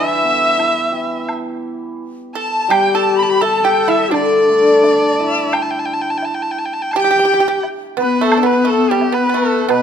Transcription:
0.00 0.58 D3 medium
0.00 2.00 E3 medium
0.00 1.26 E4 medium
0.00 1.28 E5 medium
0.00 1.31 E5 medium
0.24 1.65 B3 soft
0.58 2.00 E4 soft
0.58 high woodblock soft
0.58 low woodblock soft
0.92 2.35 G4 soft
1.29 high woodblock soft
2.34 2.69 A4 medium
2.34 2.72 A5 medium
2.34 2.73 A5 medium
2.68 4.82 G3 medium
2.68 2.93 G4 medium
2.68 3.44 G4 medium
2.68 2.96 G5 medium
2.68 2.97 G5 medium
2.68 high woodblock medium
2.94 3.39 A4 medium
2.94 3.18 A5 medium
2.94 3.20 A5 medium
3.16 3.43 B5 medium
3.16 3.24 B5 medium
3.23 3.31 A5 medium
3.29 3.43 B5 medium
3.41 3.64 A4 medium
3.41 4.15 A4 medium
3.41 3.66 A5 medium
3.41 3.67 A5 medium
3.41 low woodblock soft
3.65 3.87 G4 medium
3.65 3.92 G5 medium
3.65 3.91 G5 medium
3.88 4.11 E4 medium
3.88 4.12 E5 medium
3.88 4.13 E5 medium
4.11 6.23 D3 medium
4.11 5.48 D4 medium
4.11 5.54 D4 medium
4.11 5.21 D5 medium
4.11 5.55 D5 medium
4.11 high woodblock soft
4.49 5.89 A3 soft
4.83 6.23 D4 soft
4.83 low woodblock soft
5.19 6.58 E4 soft
5.19 5.54 E5 medium
5.53 5.64 G5 medium
5.53 high woodblock medium
5.62 5.72 A5 medium
5.71 5.81 G5 medium
5.79 5.87 A5 medium
5.85 5.96 G5 medium
5.94 6.03 A5 medium
6.02 6.12 G5 medium
6.10 6.19 A5 medium
6.18 6.26 G5 medium
6.22 6.36 A5 medium
6.22 low woodblock soft
6.34 6.44 G5 medium
6.42 6.53 A5 medium
6.51 6.60 G5 medium
6.59 6.67 A5 medium
6.65 6.75 G5 medium
6.74 6.84 A5 medium
6.82 6.92 G5 medium
6.91 7.01 A5 medium
6.91 high woodblock soft
6.96 7.03 G4 medium
6.96 7.59 G4 medium
6.96 7.59 G5 medium
7.00 7.64 G5 medium
7.04 7.09 G4 medium
7.11 7.18 G4 medium
7.19 7.24 G4 medium
7.25 7.32 G4 medium
7.34 7.39 G4 medium
7.40 7.47 G4 medium
7.48 7.55 G4 medium
7.63 low woodblock soft
7.97 8.18 B3 medium
7.97 9.65 B3 medium
7.97 8.24 B4 medium
8.01 8.25 B4 medium
8.21 8.36 A3 medium
8.21 8.44 A4 medium
8.21 8.48 A4 medium
8.32 high woodblock medium
8.37 8.43 D4 soft
8.43 8.64 B3 medium
8.43 8.68 B4 medium
8.43 8.71 B4 medium
8.65 8.86 A3 medium
8.65 9.14 A4 medium
8.69 8.93 A4 medium
8.91 9.11 G3 medium
8.91 9.15 G4 medium
9.01 low woodblock soft
9.12 9.27 B3 medium
9.12 9.69 B4 medium
9.12 9.39 B4 medium
9.29 9.35 B3 soft
9.34 9.66 A3 medium
9.34 9.70 A4 medium
9.69 9.82 B2 medium
9.69 9.82 B3 medium
9.69 9.82 B4 medium
9.69 high woodblock soft

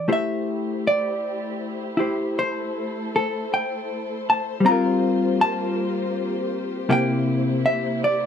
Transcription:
0.08 4.59 A3 medium
0.08 4.60 A3 soft
0.08 1.96 E4 soft
0.08 4.59 E4 soft
0.08 2.33 G4 medium
0.08 1.98 G4 soft
0.08 8.26 C5 medium
0.08 0.12 C5 soft
0.13 0.87 E5 medium
0.87 2.00 D5 medium
1.97 4.62 E4 soft
1.97 4.63 G4 soft
1.97 2.38 C5 soft
2.36 4.61 A4 medium
2.36 3.15 C5 medium
3.16 3.52 A4 medium
3.54 4.29 G5 medium
4.30 4.62 A5 medium
4.60 6.88 G3 soft
4.60 6.86 A#3 medium
4.60 6.87 F4 medium
4.60 8.26 G4 medium
4.60 6.87 A#4 medium
4.65 6.89 C4 soft
4.65 6.89 F4 medium
4.65 4.71 A#5 loud
4.72 5.41 A#4 soft
5.41 6.90 A5 medium
6.87 8.26 C3 soft
6.87 8.26 A#3 medium
6.87 8.26 A#3 soft
6.87 8.26 E4 medium
6.87 8.26 E4 soft
6.87 6.92 G4 medium
6.92 7.62 G5 medium
7.66 8.03 E5 medium
8.04 8.26 D5 medium

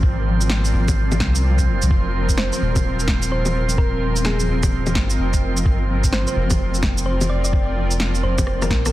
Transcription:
0.00 0.72 G#1 loud
0.00 8.92 F3 medium
0.00 8.92 C4 medium
0.00 8.92 F4 medium
0.00 8.92 A#4 medium
0.00 8.92 C5 medium
0.00 1.91 D5 medium
0.00 kick loud
0.41 shaker medium
0.50 snare loud
0.65 shaker soft
0.74 1.19 G#1 loud
0.88 kick loud
0.88 low bongo soft
0.88 shaker medium
1.12 low bongo medium
1.12 shaker soft
1.20 1.69 C2 loud
1.20 kick loud
1.20 snare loud
1.35 shaker medium
1.59 kick medium
1.59 shaker soft
1.67 1.81 F1 medium
1.82 1.90 C2 medium
1.82 shaker medium
1.90 2.50 F1 loud
1.90 kick loud
2.29 kick medium
2.29 shaker medium
2.38 2.47 C5 medium
2.38 snare loud
2.53 2.58 C5 medium
2.53 shaker soft
2.59 4.47 D#1 loud
2.59 5.66 D#5 medium
2.76 kick loud
2.76 low bongo medium
2.76 shaker medium
3.00 shaker soft
3.08 kick loud
3.08 snare loud
3.22 shaker medium
3.32 3.56 C5 medium
3.46 low bongo soft
3.46 shaker soft
3.69 shaker medium
3.78 4.23 A#4 medium
3.78 kick loud
4.16 shaker medium
4.25 4.72 G#4 medium
4.25 snare loud
4.40 shaker soft
4.49 4.94 D#1 loud
4.63 kick loud
4.63 low bongo medium
4.63 shaker medium
4.87 low bongo medium
4.87 shaker soft
4.95 5.17 G1 medium
4.95 kick loud
4.95 snare loud
5.10 shaker medium
5.19 5.64 F1 medium
5.34 kick medium
5.34 shaker soft
5.57 shaker medium
5.66 6.26 G1 loud
5.66 kick loud
5.93 8.92 D5 medium
6.04 kick medium
6.04 shaker medium
6.13 6.22 C5 medium
6.13 snare loud
6.27 6.33 C5 medium
6.27 shaker soft
6.36 8.22 F1 loud
6.50 kick loud
6.50 low bongo medium
6.50 shaker medium
6.74 shaker soft
6.83 kick loud
6.83 snare loud
6.98 shaker medium
7.06 7.31 C5 medium
7.21 low bongo medium
7.21 shaker soft
7.30 7.39 D5 medium
7.44 7.50 D5 medium
7.44 shaker medium
7.53 kick loud
7.91 shaker medium
8.00 snare loud
8.15 shaker soft
8.23 8.69 F1 loud
8.23 8.48 C5 medium
8.38 kick loud
8.38 low bongo medium
8.38 shaker medium
8.47 cross-stick medium
8.62 8.83 A#4 medium
8.62 cross-stick medium
8.62 low bongo medium
8.62 shaker soft
8.70 8.92 A#1 loud
8.70 kick loud
8.70 snare loud
8.86 8.92 A#4 medium
8.86 cross-stick medium
8.86 low bongo soft
8.86 shaker medium

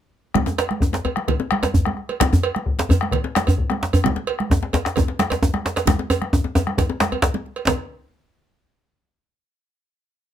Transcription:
0.34 bombo rim medium
0.34 bombo low medium
0.34 high conga medium
0.34 djembe bass medium
0.34 low conga medium
0.46 djembe slap medium
0.46 djembe tone medium
0.58 cowbell medium
0.58 djembe slap medium
0.69 bombo rim medium
0.69 high conga medium
0.80 bombo low medium
0.80 djembe tone medium
0.93 djembe slap medium
0.93 djembe tone medium
1.05 cowbell soft
1.05 djembe slap soft
1.05 djembe bass medium
1.16 bombo rim medium
1.16 high conga medium
1.28 bombo rim soft
1.28 bombo low loud
1.28 cowbell soft
1.28 low conga medium
1.40 djembe slap medium
1.40 djembe tone medium
1.51 bombo rim loud
1.51 high conga medium
1.63 cowbell soft
1.63 djembe slap soft
1.63 djembe slap medium
1.63 djembe bass medium
1.74 bombo low medium
1.74 djembe bass medium
1.85 bombo rim medium
1.85 djembe tone medium
1.85 high conga medium
1.97 bombo rim soft
1.97 djembe slap soft
2.09 cowbell soft
2.09 djembe slap soft
2.09 high conga soft
2.20 bombo rim loud
2.20 bombo low loud
2.20 djembe slap medium
2.20 high conga medium
2.20 djembe bass medium
2.20 low conga medium
2.33 djembe slap medium
2.33 djembe tone medium
2.33 djembe bass medium
2.43 cowbell medium
2.55 bombo rim medium
2.55 high conga medium
2.66 bombo low medium
2.79 djembe slap medium
2.79 djembe tone medium
2.89 cowbell soft
2.89 djembe slap soft
2.89 djembe bass medium
2.91 djembe bass medium
3.01 bombo rim medium
3.01 high conga medium
3.11 bombo rim soft
3.11 bombo low medium
3.11 cowbell medium
3.11 low conga medium
3.24 djembe slap medium
3.24 djembe tone medium
3.35 bombo rim loud
3.35 djembe slap soft
3.35 djembe slap medium
3.35 high conga medium
3.47 cowbell soft
3.47 djembe slap soft
3.47 djembe bass medium
3.58 bombo low medium
3.70 bombo rim medium
3.70 djembe slap soft
3.70 djembe tone medium
3.70 high conga medium
3.81 bombo rim soft
3.81 djembe slap soft
3.81 djembe slap medium
3.93 cowbell soft
3.93 djembe slap soft
3.93 high conga soft
3.93 djembe bass medium
4.04 bombo rim medium
4.04 bombo low medium
4.04 high conga medium
4.04 djembe bass medium
4.04 low conga medium
4.16 djembe slap medium
4.16 djembe tone medium
4.27 cowbell medium
4.39 bombo rim medium
4.39 high conga medium
4.50 bombo low medium
4.50 djembe tone loud
4.63 djembe slap medium
4.63 djembe tone medium
4.73 cowbell soft
4.73 djembe slap soft
4.73 djembe slap medium
4.73 djembe bass medium
4.85 bombo rim medium
4.85 djembe slap medium
4.96 bombo rim soft
4.96 bombo low medium
4.96 cowbell soft
4.96 djembe tone medium
4.96 low conga medium
5.08 djembe slap medium
5.08 djembe tone soft
5.19 bombo rim medium
5.19 djembe slap medium
5.19 high conga medium
5.30 cowbell soft
5.30 djembe slap soft
5.30 djembe slap medium
5.30 djembe bass medium
5.42 bombo low medium
5.42 djembe tone loud
5.53 bombo rim medium
5.53 djembe slap soft
5.53 high conga medium
5.53 djembe tone soft
5.65 bombo rim soft
5.65 djembe slap soft
5.65 djembe slap medium
5.76 cowbell soft
5.76 djembe slap soft
5.76 djembe slap medium
5.76 high conga soft
5.87 bombo rim medium
5.87 bombo low medium
5.87 djembe slap soft
5.87 high conga medium
5.87 djembe tone medium
5.87 low conga medium
5.87 djembe bass medium
5.99 djembe slap medium
5.99 djembe tone soft
6.10 bombo rim soft
6.10 cowbell medium
6.10 djembe tone medium
6.22 bombo rim medium
6.22 high conga soft
6.33 bombo low medium
6.33 djembe tone medium
6.44 djembe slap medium
6.44 djembe tone medium
6.44 high conga soft
6.55 bombo rim soft
6.55 cowbell soft
6.55 djembe slap soft
6.55 djembe tone loud
6.55 high conga soft
6.55 djembe bass medium
6.67 bombo rim medium
6.67 high conga medium
6.77 bombo low loud
6.77 cowbell soft
6.77 djembe tone medium
6.77 low conga medium
6.89 djembe slap medium
6.89 djembe tone medium
7.00 bombo rim medium
7.00 djembe slap medium
7.00 high conga medium
7.11 bombo rim soft
7.11 cowbell soft
7.11 high conga soft
7.11 djembe bass medium
7.22 bombo low medium
7.22 djembe slap medium
7.34 djembe slap soft
7.34 high conga medium
7.34 djembe tone soft
7.46 djembe slap soft
7.46 high conga soft
7.56 cowbell soft
7.67 bombo low medium
7.67 cowbell medium
7.67 djembe slap loud
7.67 djembe bass medium
7.67 low conga medium

